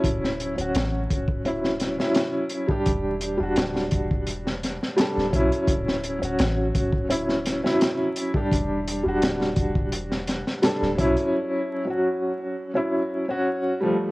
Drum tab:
HH |x-xxx-x-x-x-x-x-|x-x-x-x-x-x-x-xx|x-xxx-x-x-x-x-x-|x-x-x-x-x-x-x-xx|
SD |-o--o----oooo---|----oo---ooooo--|-o--o----oooo---|----oo---ooooo--|
BD |o-----oo-------o|o-----oo------o-|o-----oo-------o|o-----oo------o-|

HH |----------------|
SD |----------------|
BD |----------------|